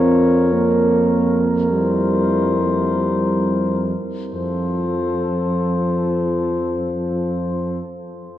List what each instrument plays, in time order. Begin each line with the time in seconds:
Already playing: tuba F2, euphonium C4, french horn F4, flugelhorn A#4, cornet C#5
0.53 euphonium A#3
1.70 euphonium G3, french horn E4, cornet C5
2.63 euphonium G3
4.32 tuba F2, euphonium F3, french horn F4, flugelhorn A4, cornet C5